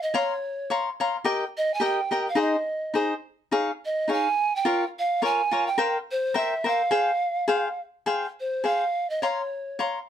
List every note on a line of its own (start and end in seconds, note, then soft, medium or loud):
0.02 0.18 D#5 medium
0.14 0.32 C#5 medium
0.14 0.71 C#5 medium
0.14 0.33 F5 medium
0.14 0.33 A#5 medium
0.14 0.33 C6 medium
0.70 0.88 C#5 medium
0.70 0.89 F5 medium
0.70 0.89 A#5 medium
0.70 0.89 C6 medium
1.00 1.16 C#5 medium
1.00 1.16 F5 medium
1.00 1.16 A#5 medium
1.00 1.16 C6 medium
1.24 1.43 G4 medium
1.24 1.44 A#4 medium
1.24 1.44 D#5 medium
1.24 1.44 G5 medium
1.57 1.75 D#5 medium
1.74 1.86 G#5 medium
1.80 1.99 G4 medium
1.80 2.00 A#4 medium
1.80 2.00 D#5 medium
1.80 2.00 G5 medium
1.85 2.27 G5 medium
2.11 2.27 G4 soft
2.11 2.27 A#4 medium
2.11 2.27 D#5 medium
2.11 2.28 G5 medium
2.29 2.42 F5 medium
2.35 2.55 D#4 medium
2.35 2.55 G#4 medium
2.35 2.56 C5 medium
2.35 2.56 D#5 medium
2.41 2.96 D#5 medium
2.94 3.13 D#4 medium
2.94 3.13 G#4 medium
2.94 3.13 C5 medium
2.94 3.14 D#5 medium
3.51 3.70 D#4 medium
3.51 3.70 G#4 medium
3.51 3.70 C#5 medium
3.51 3.71 F5 medium
3.85 4.13 D#5 medium
4.08 4.27 D#4 soft
4.08 4.27 G#4 soft
4.08 4.28 C#5 medium
4.08 4.28 F5 medium
4.12 4.57 G#5 loud
4.56 4.83 G5 medium
4.65 4.84 F4 medium
4.65 4.84 A#4 medium
4.65 4.84 C#5 medium
4.65 4.84 F5 medium
4.99 5.26 F5 loud
5.22 5.41 F4 medium
5.22 5.41 A#4 medium
5.22 5.41 C#5 medium
5.22 5.41 F5 medium
5.22 5.68 G#5 loud
5.51 5.68 F4 medium
5.51 5.68 A#4 medium
5.51 5.68 C#5 medium
5.51 5.69 F5 medium
5.67 5.95 G5 medium
5.78 5.97 A#4 medium
5.78 5.97 C5 medium
5.78 5.97 F5 medium
5.78 5.97 G5 medium
6.11 6.38 C5 medium
6.34 6.53 A#4 medium
6.34 6.53 C5 medium
6.34 6.54 E5 medium
6.34 6.69 E5 medium
6.34 6.54 G5 medium
6.64 6.81 A#4 medium
6.64 6.81 C5 medium
6.64 6.82 E5 medium
6.64 7.81 F5 medium
6.64 6.82 G5 soft
6.91 7.10 G#4 medium
6.91 7.10 C5 medium
6.91 7.10 F5 medium
6.91 7.10 G5 medium
7.48 7.67 G#4 medium
7.48 7.67 C5 medium
7.48 7.68 F5 medium
7.48 7.68 G5 medium
8.06 8.25 G#4 medium
8.06 8.25 C5 medium
8.06 8.26 F5 medium
8.06 8.26 G5 medium
8.40 8.68 C5 medium
8.64 8.83 G#4 medium
8.64 8.83 C5 soft
8.64 8.84 F5 medium
8.64 9.11 F5 medium
8.64 8.84 G5 soft
9.10 9.24 D#5 medium
9.22 9.41 C#5 medium
9.22 9.80 C#5 medium
9.22 9.41 F5 medium
9.22 9.41 A#5 medium
9.22 9.41 C6 medium
9.79 9.98 C#5 medium
9.79 9.98 F5 soft
9.79 9.98 A#5 medium
9.79 9.98 C6 medium